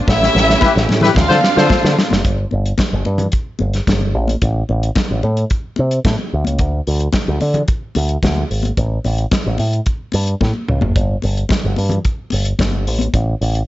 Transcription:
0.08 0.28 A1 loud
0.08 1.15 A3 medium
0.08 1.15 C#4 medium
0.08 0.88 E4 medium
0.08 1.15 G4 medium
0.08 0.88 E5 loud
0.08 kick loud
0.08 snare medium
0.23 snare medium
0.35 0.55 A1 loud
0.35 snare medium
0.35 muted conga soft
0.50 snare medium
0.61 0.70 E4 medium
0.61 0.70 G4 medium
0.61 0.70 B4 medium
0.61 kick loud
0.61 snare medium
0.61 high conga medium
0.76 0.86 A1 loud
0.76 snare medium
0.89 1.09 A2 medium
0.89 snare medium
0.89 muted conga medium
1.01 1.11 E4 medium
1.01 1.11 G4 medium
1.01 1.11 B4 loud
1.01 snare medium
1.01 low conga medium
1.15 1.26 D2 loud
1.15 2.24 D3 medium
1.15 2.24 C4 medium
1.15 2.24 D4 medium
1.15 1.96 F4 loud
1.15 2.24 F4 medium
1.15 1.95 F5 loud
1.15 kick loud
1.15 snare medium
1.15 low conga medium
1.29 1.40 D3 loud
1.29 1.38 F4 medium
1.29 1.38 A4 medium
1.29 1.38 C5 medium
1.29 snare medium
1.41 snare loud
1.41 muted conga medium
1.56 1.67 D3 medium
1.56 1.95 F4 medium
1.56 1.95 A4 loud
1.56 1.95 C5 loud
1.56 snare medium
1.69 kick loud
1.69 snare loud
1.69 high conga medium
1.83 1.94 D3 medium
1.83 snare medium
1.83 high conga medium
1.99 snare loud
2.10 2.21 F#1 medium
2.10 snare loud
2.10 high conga medium
2.25 2.44 G1 medium
2.25 kick medium
2.25 closed hi-hat medium
2.51 2.72 G1 medium
2.51 muted conga soft
2.66 closed hi-hat soft
2.78 kick medium
2.78 snare loud
2.78 closed hi-hat medium
2.78 high conga medium
2.93 3.03 G1 medium
3.05 3.26 G2 medium
3.05 muted conga soft
3.18 closed hi-hat soft
3.18 low conga medium
3.32 kick medium
3.32 closed hi-hat medium
3.59 3.80 G1 medium
3.59 muted conga medium
3.73 snare soft
3.73 closed hi-hat soft
3.87 4.15 G1 medium
3.87 kick medium
3.87 snare loud
3.87 closed hi-hat medium
3.87 high conga medium
4.01 high conga soft
4.15 4.34 A1 medium
4.28 closed hi-hat soft
4.28 high conga medium
4.42 4.62 A1 medium
4.42 kick loud
4.42 closed hi-hat medium
4.69 4.89 A1 medium
4.69 muted conga soft
4.83 closed hi-hat soft
4.95 kick loud
4.95 snare loud
4.95 closed hi-hat medium
4.95 high conga medium
5.11 5.20 A1 medium
5.23 5.43 A2 loud
5.23 muted conga soft
5.37 closed hi-hat soft
5.50 kick medium
5.50 closed hi-hat medium
5.76 5.98 C3 medium
5.76 muted conga soft
5.91 closed hi-hat soft
6.05 6.15 A2 medium
6.05 kick medium
6.05 snare loud
6.05 closed hi-hat medium
6.05 high conga medium
6.18 high conga soft
6.33 6.43 D2 loud
6.45 6.60 C#2 medium
6.45 closed hi-hat medium
6.45 high conga medium
6.59 6.79 D2 medium
6.59 kick loud
6.59 closed hi-hat medium
6.87 7.07 D2 medium
6.87 open hi-hat medium
7.00 closed hi-hat soft
7.13 kick loud
7.13 snare loud
7.13 closed hi-hat medium
7.13 high conga medium
7.28 7.38 D2 medium
7.41 7.61 D3 medium
7.41 open hi-hat soft
7.41 muted conga soft
7.54 closed hi-hat soft
7.54 low conga medium
7.68 kick loud
7.68 closed hi-hat medium
7.95 8.16 D2 medium
7.95 open hi-hat medium
7.95 muted conga medium
8.09 closed hi-hat soft
8.23 8.43 D2 medium
8.23 kick medium
8.23 snare loud
8.23 closed hi-hat medium
8.23 high conga medium
8.36 high conga soft
8.51 8.70 G#1 medium
8.51 open hi-hat medium
8.63 closed hi-hat soft
8.63 high conga medium
8.77 8.97 A1 medium
8.77 kick loud
8.77 closed hi-hat medium
9.04 9.24 A1 loud
9.04 open hi-hat medium
9.04 muted conga soft
9.18 closed hi-hat soft
9.31 kick loud
9.31 snare loud
9.31 closed hi-hat medium
9.31 high conga medium
9.46 9.56 A1 medium
9.58 9.79 A2 medium
9.58 open hi-hat medium
9.58 muted conga soft
9.73 closed hi-hat soft
9.86 kick medium
9.86 closed hi-hat medium
10.12 10.34 G2 medium
10.12 open hi-hat medium
10.12 muted conga soft
10.27 closed hi-hat soft
10.41 10.51 A2 loud
10.41 kick medium
10.41 snare soft
10.41 high conga medium
10.54 high conga soft
10.68 10.78 C#2 medium
10.68 mid tom medium
10.81 10.92 F#1 medium
10.81 floor tom medium
10.81 high conga medium
10.96 11.16 G1 medium
10.96 kick loud
10.96 closed hi-hat medium
11.22 11.43 G1 medium
11.22 open hi-hat medium
11.22 muted conga soft
11.37 closed hi-hat soft
11.49 kick loud
11.49 snare loud
11.49 closed hi-hat medium
11.49 high conga medium
11.64 11.74 G1 medium
11.76 11.98 G2 medium
11.76 open hi-hat soft
11.76 muted conga soft
11.89 closed hi-hat soft
11.89 low conga medium
12.05 kick medium
12.05 closed hi-hat medium
12.30 12.52 G1 medium
12.30 open hi-hat medium
12.30 muted conga soft
12.45 closed hi-hat soft
12.59 12.87 G1 medium
12.59 kick medium
12.59 snare medium
12.59 closed hi-hat medium
12.59 high conga medium
12.72 high conga soft
12.87 13.07 A1 loud
12.87 open hi-hat medium
12.99 closed hi-hat soft
12.99 high conga medium
13.14 13.34 A1 medium
13.14 kick loud
13.14 closed hi-hat medium
13.41 13.61 A1 medium
13.41 open hi-hat medium
13.55 closed hi-hat soft

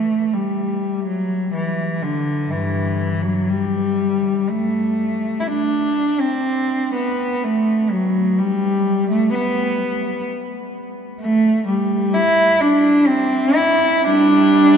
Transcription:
0.00 0.33 A3 medium
0.34 1.07 G3 soft
1.05 1.53 F#3 soft
1.54 2.01 E3 soft
2.02 2.51 D3 soft
2.50 3.20 G2 soft
2.50 3.24 E3 soft
3.22 3.48 F#3 soft
3.49 4.48 G3 medium
4.49 5.41 A3 medium
5.40 5.47 E4 soft
5.47 6.22 D4 medium
6.20 6.94 C4 medium
6.94 7.43 B3 medium
7.44 7.92 A3 medium
7.90 8.39 F#3 medium
8.38 9.10 G3 medium
9.10 9.33 A3 medium
9.34 10.25 B3 medium
11.20 11.64 A3 medium
11.67 12.15 G3 medium
12.14 12.62 E4 medium
12.61 13.10 D4 medium
13.07 13.57 C4 medium
13.55 14.06 E4 medium
14.04 14.77 G3 medium
14.04 14.77 D4 medium

